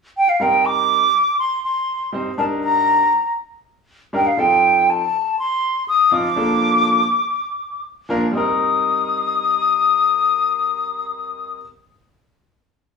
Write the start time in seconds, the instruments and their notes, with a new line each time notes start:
0.17 flute G5
0.29 flute F5
0.40 grand piano G3 C4 D#4 A#4, flute G5
0.66 flute D6
1.39 flute C6
1.65 flute C6
2.12 grand piano G3 C4 D#4 C5
2.38 grand piano G3 D4 D#4 A#4, flute A5
2.63 flute A#5
4.13 grand piano G3 D4 D#4 A#4, flute G5
4.27 flute F5
4.37 grand piano F3 C4 D#4 A4, flute G5
4.90 flute A5
5.39 flute C6
5.88 flute D#6
6.11 grand piano F3 C4 D#4 F4, flute D6
6.36 grand piano F3 A#3 D4 A4
8.09 grand piano F3 A#3 D4 A#4
8.31 grand piano G3 C4 D#4, flute D#6
8.37 grand piano A#4